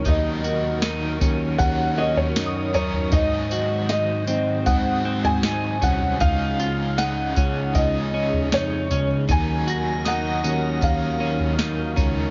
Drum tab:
TB |x-x-x-x-x---x-x-|x-x-x-x-x---x-x-|x-x-x-x-x---x-x-|x-x-x-x-x---x-x-|
SD |----o-------o---|----o-------o---|----o-------o---|----o-------o---|
FT |o-------o--o--oo|o-------o--o--oo|o-------o--o--o-|o-------o--o--oo|
BD |o-----o-o-------|o-------o-----o-|o-----o-o-------|o-------o-----o-|